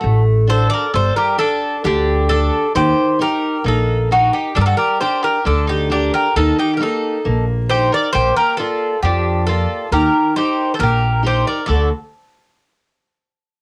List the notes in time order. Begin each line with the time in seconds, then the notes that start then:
Already playing: F#4 A4
0.01 A1 A3
0.47 D4 F#4 A4 C5
0.70 A#4 D5
0.94 G1 G3 A4 C5
1.16 G4 A#4
1.38 D4 G4 A4
1.84 D2 D3 D4 G4
2.29 D4 G4 A4
2.75 D#2 D#3 G4 C5
3.19 D#4 G4 A#4
3.64 A#1 A#3 D#4 A4
4.11 D#4 F#4 G4 A#4
4.33 D#4 G4
4.55 G2 G3 D4 A4
4.60 G4 A#4
4.66 F#4 A4
4.77 G4 A#4
5.00 D4 G4 A#4 C5
5.23 G4 A#4
5.45 D2 D3 D4 A4
5.67 D#4 G4
5.90 D4 G4 A#4
6.14 G4 A#4
6.36 D#2 D#3 D#4 A4
6.59 D#4 G4
6.74 G4 A#4
6.79 A#3 D#4 G4 A4
7.25 A#1 A#3
7.69 D#4 G4 A#4 C5
7.92 A#4 D5
8.13 A#1 A#3 G4 C5
8.36 G4 A#4
8.57 A#3 F4 G4 A4 D5
9.03 F2 F3 D4 G4
9.47 A#3 F4 G4 A4 D5
9.92 D#2 D#3 G4 A#4
10.36 D#4 G4 A#4 C5
10.74 A4 C5
10.79 A#1 A#3 A#4
10.83 G4
11.23 D#4 G4 A#4 C5
11.27 G4
11.47 A#4 D5
11.66 D2 D3 A3 D4 F#4 A4 D5